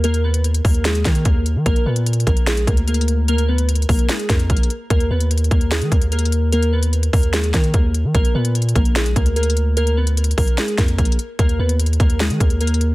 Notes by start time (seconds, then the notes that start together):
Already playing: D#2
0.04 A#3 A#4, closed hi-hat
0.14 closed hi-hat
0.24 B3 B4
0.34 closed hi-hat
0.44 closed hi-hat
0.54 closed hi-hat
0.65 D#2 A#3 A#4, kick, open hi-hat
0.75 closed hi-hat
0.85 G#3 G#4, snare, closed hi-hat
0.95 closed hi-hat
1.05 D#3 A#3 A#4, kick, snare, closed hi-hat
1.15 closed hi-hat
1.25 D#2 A#3 A#4, kick, closed hi-hat
1.46 closed hi-hat
1.56 D#3
1.66 A#1 A#3 A#4, kick, closed hi-hat
1.76 closed hi-hat
1.86 A#2 B3 B4
1.96 closed hi-hat
2.06 closed hi-hat
2.13 closed hi-hat
2.20 closed hi-hat
2.27 A#1 A#3 A#4, kick, closed hi-hat
2.37 closed hi-hat
2.47 G#3 G#4, snare, closed hi-hat
2.57 closed hi-hat
2.67 D2 A#3 A#4, kick, closed hi-hat
2.77 closed hi-hat
2.87 A#3 A#4, closed hi-hat
2.94 closed hi-hat
3.01 closed hi-hat
3.08 closed hi-hat
3.28 A#3 A#4, closed hi-hat
3.38 closed hi-hat
3.48 B3 B4
3.58 closed hi-hat
3.69 closed hi-hat
3.75 closed hi-hat
3.82 closed hi-hat
3.89 A#1 A#3 A#4, kick, open hi-hat
3.99 closed hi-hat
4.09 G#3 G#4, snare, closed hi-hat
4.19 closed hi-hat
4.29 F2 A#3 A#4, kick, snare, closed hi-hat
4.39 closed hi-hat
4.50 A#1 A#3 A#4, kick, closed hi-hat
4.57 closed hi-hat
4.63 closed hi-hat
4.70 closed hi-hat
4.90 D#2 A#3 A#4, kick, closed hi-hat
5.00 closed hi-hat
5.11 D#2 B3 B4
5.21 closed hi-hat
5.31 closed hi-hat
5.38 closed hi-hat
5.44 closed hi-hat
5.51 D#2 A#3 A#4, kick, closed hi-hat
5.61 closed hi-hat
5.71 G#3 G#4, snare, closed hi-hat
5.82 D#3, closed hi-hat
5.92 D#2 A#3 A#4, kick, closed hi-hat
6.02 closed hi-hat
6.12 A#3 A#4, closed hi-hat
6.19 closed hi-hat
6.25 closed hi-hat
6.32 closed hi-hat
6.52 A#3 A#4, closed hi-hat
6.63 closed hi-hat
6.73 B3 B4
6.83 closed hi-hat
6.93 closed hi-hat
7.03 closed hi-hat
7.13 D#2 A#3 A#4, kick, open hi-hat
7.23 closed hi-hat
7.33 G#3 G#4, snare, closed hi-hat
7.44 closed hi-hat
7.54 D#3 A#3 A#4, kick, snare, closed hi-hat
7.64 closed hi-hat
7.74 D#2 A#3 A#4, kick, closed hi-hat
7.94 closed hi-hat
8.04 D#3
8.15 A#1 A#3 A#4, kick, closed hi-hat
8.25 closed hi-hat
8.35 A#2 B3 B4
8.45 closed hi-hat
8.55 closed hi-hat
8.62 closed hi-hat
8.69 closed hi-hat
8.75 A#1 A#3 A#4, kick, closed hi-hat
8.85 closed hi-hat
8.96 G#3 G#4, snare, closed hi-hat
9.06 closed hi-hat
9.16 D2 A#3 A#4, kick, closed hi-hat
9.26 closed hi-hat
9.36 A#3 A#4, closed hi-hat
9.43 closed hi-hat
9.50 closed hi-hat
9.57 closed hi-hat
9.77 A#3 A#4, closed hi-hat
9.87 closed hi-hat
9.97 B3 B4
10.07 closed hi-hat
10.17 closed hi-hat
10.24 closed hi-hat
10.31 closed hi-hat
10.38 A#1 A#3 A#4, kick, open hi-hat
10.48 closed hi-hat
10.58 G#3 G#4, snare, closed hi-hat
10.68 closed hi-hat
10.78 F2 A#3 A#4, kick, snare, closed hi-hat
10.88 closed hi-hat
10.98 A#1 A#3 A#4, kick, closed hi-hat
11.05 closed hi-hat
11.12 closed hi-hat
11.19 closed hi-hat
11.39 D#2 A#3 A#4, kick, closed hi-hat
11.49 closed hi-hat
11.59 D#2 B3 B4
11.69 closed hi-hat
11.80 closed hi-hat
11.86 closed hi-hat
11.93 closed hi-hat
12.00 D#2 A#3 A#4, kick, closed hi-hat
12.10 closed hi-hat
12.20 G#3 G#4, snare, closed hi-hat
12.30 D#3, closed hi-hat
12.40 D#2 A#3 A#4, kick, closed hi-hat
12.50 closed hi-hat
12.61 A#3 A#4, closed hi-hat
12.67 closed hi-hat
12.74 closed hi-hat
12.81 closed hi-hat